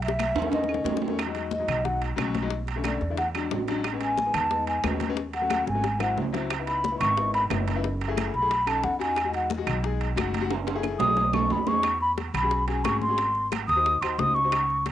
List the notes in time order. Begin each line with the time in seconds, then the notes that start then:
Already playing: B1
0.02 E5, high conga, high timbale
0.08 high bongo
0.19 high conga, high timbale, claves
0.34 D#2, high conga, high timbale
0.42 D#3 A3 C#4, low bongo
0.51 D#5, low bongo, high conga, high timbale
0.63 low bongo
0.68 D#3 A3 C#4, high conga, claves
0.74 low bongo
0.83 E2 D#3 A3 C#4, low bongo, low timbale
0.97 low bongo
1.02 high conga, low timbale
1.08 D#3 A3 C#4, low bongo
1.18 high bongo, high conga, high timbale, claves
1.26 F#3 G#3 D#4
1.35 high bongo, high conga, high timbale
1.51 D#5, high bongo, high conga
1.59 F#3 G#3 D#4
1.68 B1, high bongo, high conga, low conga, high timbale, claves
1.84 F#3 G#3 D#4 F#5, high bongo, high conga, low conga
2.02 high conga, high timbale
2.16 B1 F#3 G#3 C#4, high bongo, low bongo, high conga, high timbale, claves
2.34 high bongo, high conga, high timbale
2.42 F#3 G#3 D#4
2.50 high bongo, high conga
2.67 high bongo, high conga, high timbale
2.76 D3 A3 C#4
2.84 D5, high bongo, high conga, high timbale, claves
3.01 E2, high bongo, high conga
3.10 D3 A3 E4
3.18 F#5, high bongo, high conga, high timbale
3.35 F#3 G#3 D4, high conga, high timbale, claves
3.51 A1, high bongo, low bongo, low timbale
3.68 F#3 G#3 D4, high bongo, high conga, high timbale
3.84 high bongo, high conga, high timbale, claves
3.93 G#3 B3 C#4
4.01 G#5, high bongo, high conga, high timbale
4.17 high bongo, high conga
4.26 G#3 B3 D#4
4.34 E2 A5, high bongo, high conga, low conga, high timbale, claves
4.51 G#3 B3 D#4, high bongo, high conga
4.67 G#5, high conga, high timbale
4.84 D#2 G#3 B3 C#4, high bongo, low bongo, high conga, high timbale, low timbale, claves
5.00 high bongo, high conga, high timbale
5.09 G#3 B3 C#4
5.17 high bongo, high conga
5.34 F#5, high bongo, high conga, high timbale
5.42 F#3 A3 C#4
5.50 high bongo, high conga, high timbale, claves
5.67 G#1 G#5, high bongo, high conga
5.74 F#3 A3 C#4
5.84 high bongo, high timbale
5.99 F#3 C4 E4 F#5, low bongo, high timbale, claves
6.17 C#2, low bongo, high conga, low timbale
6.33 F#3 C4 E4, low bongo, high conga, high timbale
6.50 high bongo, high conga, high timbale, claves
6.59 B3 D#4 E4
6.67 B5, high bongo, high conga, high timbale
6.84 high bongo, high conga
6.91 B3 D#4 E4
7.00 G#1 C#6, high bongo, high conga, low conga, high timbale, claves
7.16 B3 D#4 E4, high bongo, high conga
7.34 B5, high conga, high timbale
7.49 F#1 B3 D#4 E4, high bongo, low bongo, high conga, high timbale, low timbale, claves
7.68 high bongo, high conga, high timbale
7.75 B3 D#4 E4
7.84 high bongo, high conga
8.01 high bongo, high conga, high timbale
8.08 A3 E4 G#4
8.17 high bongo, high conga, high timbale, claves
8.34 B1 B5, high bongo, high conga
8.42 A3 E4 G#4
8.51 high bongo, high conga, high timbale
8.66 C#4 D#4 A4 A5, high conga, high timbale, claves
8.84 E2 F#5, high bongo, low bongo, high conga
8.99 C#4 D#4 F#4 G#5, high bongo, high conga, high timbale
9.16 high bongo, high conga, high timbale, claves
9.24 G#3 D#4 F#4
9.34 F#5, high bongo, high conga, high timbale
9.50 high bongo, high conga
9.58 G#3 D#4 F#4
9.67 B1, high bongo, high conga, low conga, high timbale, claves
9.83 G#3 D#4 G#4, high bongo, high conga
10.01 high conga, high timbale
10.16 F#1 G#3 D#4 F#4, high bongo, low bongo, high conga, high timbale, claves
10.34 high bongo, high conga, high timbale
10.40 G#3 D#4 F#4
10.50 high bongo, high conga, high timbale
10.67 high bongo, high timbale
10.75 A3 E4 G#4
10.83 low bongo, high conga, claves
10.99 B1 D#6, low bongo, high conga, low timbale
11.07 A3 E4 G#4
11.17 low bongo, high conga, low timbale
11.33 C#4 D#4 A4 C#6, low bongo, high conga, low timbale, claves
11.50 E2 B5, high conga, low timbale
11.67 C#4 D#4 G#4 C#6, low bongo, low timbale
11.83 high bongo, high conga, high timbale, claves
12.01 B5, high conga
12.18 high bongo, high conga, high timbale
12.34 B1 B5, low conga, high timbale, claves
12.42 C#4 F#4 G#4
12.51 high bongo, high conga
12.67 C#4 F#4 G#4 G#5, high conga, high timbale
12.84 G#1 C#4 F#4 G#4 C#6, high bongo, low bongo, high conga, high timbale, claves
13.01 C6, high conga
13.08 C#4 F#4 G#4
13.18 high bongo, high timbale
13.35 high bongo, high conga
13.52 high bongo, high conga, high timbale, claves
13.68 D#2 D#6, high bongo, high timbale
13.76 D#4 F#4 C5
13.86 high bongo, high conga
14.01 D#2 D#4 F#4 C5 C6, high conga, high timbale, claves
14.18 C#2 D#4 F#4 C5 D#6, high bongo, low bongo, high conga
14.35 C#6, high bongo, high conga
14.44 D#4 F#4 C5
14.52 high bongo, high conga, high timbale, claves
14.70 high conga
14.86 high bongo, high conga, high timbale